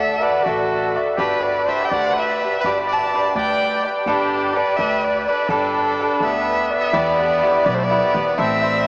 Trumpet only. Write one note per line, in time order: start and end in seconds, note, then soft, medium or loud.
0.00 0.22 A4 medium
0.20 0.45 B4 medium
0.43 1.00 F#4 medium
1.16 1.43 G4 medium
1.42 1.68 B4 medium
1.66 1.84 C5 medium
1.83 1.91 E5 soft
1.90 2.15 D5 medium
2.14 2.60 B4 medium
2.60 2.73 B4 medium
2.87 3.32 D5 medium
3.37 3.87 D5 medium
4.08 4.56 D4 medium
4.55 4.77 B4 medium
4.77 5.04 B4 medium
5.04 5.27 B4 medium
5.29 5.51 B4 medium
5.50 6.22 D4 medium
6.25 6.94 B3 medium
6.94 7.66 B3 medium
7.67 7.76 B3 medium
7.75 7.87 A3 soft
7.85 8.41 B3 medium
8.41 8.87 C4 medium